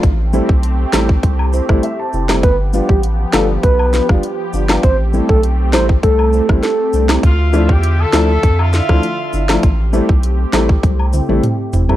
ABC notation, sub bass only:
X:1
M:4/4
L:1/16
Q:1/4=100
K:Am
V:1 name="Sub bass" clef=bass
A,,,3 B,,,3 A,,,2 C,,3 A,,, z2 F,,,2 | G,,,3 A,,,3 G,,,2 B,,,3 G,,, z2 G,,,2 | A,,,3 B,,,3 A,,,2 C,,3 A,,, z2 C,,2 | D,,3 E,,3 D,,2 F,,3 D,, z2 G,,,2 |
A,,,3 B,,,3 A,,,2 C,,3 A,,, z2 F,,,2 |]